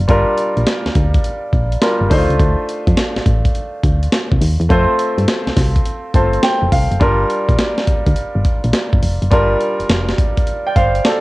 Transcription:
0.08 G1 G3 D4 F4 A#4, kick, closed hi-hat
0.38 closed hi-hat
0.57 A#1, closed hi-hat
0.66 snare, closed hi-hat
0.86 D2, snare
0.95 D2, kick, closed hi-hat
1.14 kick, closed hi-hat
1.24 closed hi-hat
1.53 A#1, kick, closed hi-hat
1.72 closed hi-hat
1.81 G3 D4 F4 A#4, snare, closed hi-hat
2.01 G1
2.10 D2 A3 D4 D#4 C5, kick, open hi-hat
2.18 F4
2.29 C#2, closed hi-hat
2.39 D2, kick, closed hi-hat
2.69 closed hi-hat
2.87 F2, kick, closed hi-hat
2.97 snare, closed hi-hat
3.16 A1, snare
3.26 A1, kick, closed hi-hat
3.45 kick, closed hi-hat
3.55 closed hi-hat
3.83 D2, kick, closed hi-hat
4.03 closed hi-hat
4.12 snare, closed hi-hat
4.31 C2, kick
4.41 D#2, open hi-hat
4.60 E2, closed hi-hat
4.69 F2 A3 C4 F4 C5, kick, closed hi-hat
4.99 closed hi-hat
5.18 G2, closed hi-hat
5.28 snare, closed hi-hat
5.47 C2, snare
5.57 C2, kick, snare, open hi-hat
5.76 kick, closed hi-hat
5.86 closed hi-hat
6.14 G1 A3 C4 F4 C5 A5, kick, closed hi-hat
6.33 closed hi-hat
6.43 G5, snare, closed hi-hat
6.62 F1
6.72 C2 F5, kick, open hi-hat
6.91 F#1, closed hi-hat
7.00 G1 G3 D4 F4 A#4, kick, closed hi-hat
7.30 closed hi-hat
7.49 A#1, kick, closed hi-hat
7.58 snare, closed hi-hat
7.78 snare
7.87 D2, kick, closed hi-hat
8.06 D2, kick, closed hi-hat
8.16 G1, closed hi-hat
8.35 G1
8.45 kick, closed hi-hat
8.64 A#1, closed hi-hat
8.73 snare, closed hi-hat
8.93 G1, kick
9.03 F1, open hi-hat
9.22 F#1, closed hi-hat
9.31 G1 G3 D4 F4 A#4, kick, closed hi-hat
9.61 closed hi-hat
9.80 F1, closed hi-hat
9.89 F1, snare, closed hi-hat
10.09 snare
10.18 kick, closed hi-hat
10.37 kick, closed hi-hat
10.47 closed hi-hat
10.67 D5 G5
10.76 G1 C5 F5, kick, closed hi-hat
10.95 closed hi-hat
11.05 A4 D5, snare, closed hi-hat

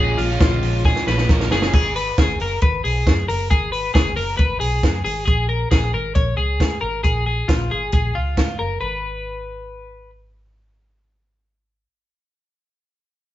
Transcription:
Already playing: A#1 A#2 F3 G#3 C#4 G#4
0.18 A#1 F4, open hi-hat
0.28 F3 G#3 C#4
0.40 A#1 F4, kick, snare, closed hi-hat
0.50 F3 G#3 C#4
0.63 A#1, open hi-hat
0.85 G#4, kick, snare
0.96 snare
1.06 A#1 A#2 F3 G#3 C#4 B4, snare
1.18 snare
1.28 A#1 A#2 F3 G#3 C#4 A#4, kick, snare
1.40 snare
1.50 F#1 A#2 F3 G#3 C#4 G#4, snare
1.62 snare
1.73 G#1 G#4, kick, crash
1.96 B4, open hi-hat
2.18 G#1 G#4, kick, snare, closed hi-hat
2.40 F#1 A#4, open hi-hat
2.62 G#1 B4, kick, closed hi-hat
2.84 B1 G#4, open hi-hat
3.07 F#2, kick, snare, closed hi-hat
3.28 F#1 A#4, open hi-hat
3.50 G#1 G#4, kick, closed hi-hat
3.72 B4, open hi-hat
3.94 G#1 G#4, kick, snare, closed hi-hat
4.16 F#1 A#4, open hi-hat
4.37 G#1 B4, kick, closed hi-hat
4.60 B1 G#4, open hi-hat
4.83 F#2, kick, snare, closed hi-hat
5.05 G#1 G#4, open hi-hat
5.25 A#1 G#4, kick, closed hi-hat
5.49 A#4
5.71 A#1 G#4, kick, snare, closed hi-hat
5.93 G#1 A#4
6.15 A#1 C#5, kick, closed hi-hat
6.37 C#2 G#4
6.60 G#2, kick, snare, closed hi-hat
6.81 G#1 A#4
7.04 A#1 G#4, kick, closed hi-hat
7.26 G#4
7.48 A#1 F4, kick, snare, closed hi-hat
7.71 G#1 G#4
7.92 A#1 G#4, kick, closed hi-hat
8.15 C#2 F4
8.37 G#2, kick, snare, closed hi-hat
8.59 F#1 A#4
8.81 G#1 B4

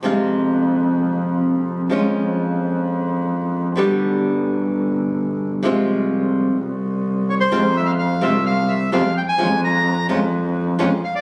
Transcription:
0.03 F2 C3 F3 G#3 C4 F4
1.90 F2 F3 G#3 C#4 F4
3.76 G1 B2 D3 G3 B3 G4
5.63 C2 C3 F3 G#3 C4 F4
6.57 C2
7.30 C#5
7.40 C5
7.51 F2 C3 F3 G#3 C4 F4
7.76 E5
7.86 F5
7.99 F5
8.21 C2 C3 F3 G#3 C4 F4 E5
8.46 F5
8.68 E5
8.92 F2 C3 F3 G#3 C4 F4 F5
9.17 G5
9.29 G#5
9.38 F2 F3 G#3 C#4 F4
9.64 A#5
10.09 F2 F3 G#3 C#4 F4
10.79 F2 F3 G#3 C#4 F4
11.04 F5
11.15 D5

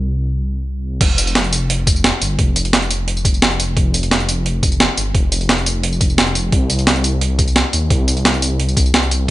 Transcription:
Already playing: C2
1.01 F1, kick, closed hi-hat, crash
1.18 closed hi-hat, tambourine
1.27 closed hi-hat, tambourine
1.35 snare, closed hi-hat
1.44 closed hi-hat
1.53 closed hi-hat, tambourine
1.70 closed hi-hat
1.87 kick, closed hi-hat, tambourine
1.96 tambourine
2.04 snare, closed hi-hat
2.22 G1, closed hi-hat, tambourine
2.39 F1, kick, closed hi-hat
2.56 closed hi-hat, tambourine
2.65 closed hi-hat, tambourine
2.73 snare, closed hi-hat
2.82 closed hi-hat
2.91 closed hi-hat, tambourine
3.08 closed hi-hat
3.17 tambourine
3.25 kick, closed hi-hat, tambourine
3.34 tambourine
3.42 snare, closed hi-hat
3.51 closed hi-hat
3.60 closed hi-hat, tambourine
3.77 F1, kick, closed hi-hat
3.94 closed hi-hat, tambourine
4.03 closed hi-hat, tambourine
4.11 snare, closed hi-hat
4.20 closed hi-hat
4.29 closed hi-hat, tambourine
4.46 closed hi-hat
4.63 kick, closed hi-hat, tambourine
4.72 tambourine
4.80 snare, closed hi-hat
4.97 G1, closed hi-hat, tambourine
5.15 F1, kick, closed hi-hat
5.32 closed hi-hat, tambourine
5.41 closed hi-hat, tambourine
5.49 F1, snare, closed hi-hat
5.58 closed hi-hat
5.66 closed hi-hat, tambourine
5.83 closed hi-hat
5.92 tambourine
6.01 kick, closed hi-hat, tambourine
6.10 tambourine
6.18 snare, closed hi-hat
6.27 closed hi-hat
6.35 closed hi-hat, tambourine
6.52 C2, kick, closed hi-hat
6.70 closed hi-hat, tambourine
6.79 closed hi-hat, tambourine
6.87 snare, closed hi-hat
6.96 closed hi-hat
7.04 closed hi-hat, tambourine
7.21 closed hi-hat
7.39 kick, closed hi-hat, tambourine
7.48 tambourine
7.56 snare, closed hi-hat
7.73 D#2, closed hi-hat, tambourine
7.90 C2, kick, closed hi-hat
8.08 closed hi-hat, tambourine
8.17 closed hi-hat, tambourine
8.25 C2, snare, closed hi-hat
8.34 closed hi-hat
8.42 closed hi-hat, tambourine
8.60 closed hi-hat
8.69 tambourine
8.77 kick, closed hi-hat, tambourine
8.86 tambourine
8.94 snare, closed hi-hat
9.03 closed hi-hat
9.11 closed hi-hat, tambourine

